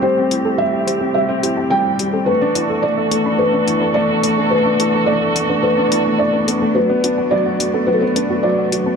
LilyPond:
<<
  \new Staff \with { instrumentName = "Felt piano" } { \time 4/4 \key e \minor \tempo 4 = 107 c''4 e''4 e''4 g''4 | b'4 d''4 b'4 d''4 | b'4 d''4 b'4 d''4 | b'4 d''4 b'32 a'32 b'8. d''4 | }
  \new Staff \with { instrumentName = "Synth arpeggio sound" } { \time 4/4 \key e \minor g'16 r8 a'16 g'16 r16 c''16 g'16 g'16 e''16 g'16 a''16 g'16 r8 a'16 | a'16 r16 d''16 a'16 a'16 e''16 a'16 b''16 a'16 r8 b'16 a'16 r16 d''16 a'16 | a'16 e''16 a'16 b''16 a'16 r8 b'16 a'16 r16 b''16 a''16 e''16 b'16 a'16 a'16 | fis'16 d''16 fis'16 a''16 fis'16 r8 a'16 fis'16 r16 b'16 fis'16 fis'16 d''16 fis'16 a''16 | }
  \new Staff \with { instrumentName = "String quartet" } { \time 4/4 \key e \minor << { <a c' g'>1 | <e d' fis' a'>1~ | <e d' fis' a'>1 | a1 | } \\ { r1 | b1~ | b1~ | b1 | } >> }
  \new Staff \with { instrumentName = "Upright piano" } { \time 4/4 \key e \minor g16 c'16 e'16 g'16 g16 g'16 g16 c'16 g16 c'16 e'16 g'16 g16 g'16 g16 c'16 | a16 d'16 e'16 a'16 a16 a'16 a16 d'16 a16 d'16 e'16 a'16 a16 a'16 a16 d'16 | a16 d'16 e'16 a'16 a16 a'16 a16 d'16 a16 d'16 e'16 a16 d'16 d'16 b16 a16 | fis16 b16 d'16 fis'16 fis16 fis'16 fis16 b16 fis16 b16 d'16 fis'16 fis16 fis'16 fis16 b16 | }
  \new Staff \with { instrumentName = "Sub bass" } { \clef bass \time 4/4 \key e \minor a,,1 | r1 | r1 | r1 | }
  \new DrumStaff \with { instrumentName = "Drums" } \drummode { \time 4/4 r8 hh8 r8 hh8 r8 hh8 r8 hh8 | r8 hh8 r8 hh8 r8 hh8 r8 hh8 | r8 hh8 r8 hh8 r8 hh8 r8 hh8 | r8 hh8 r8 hh8 r8 hh8 r8 hh8 | }
>>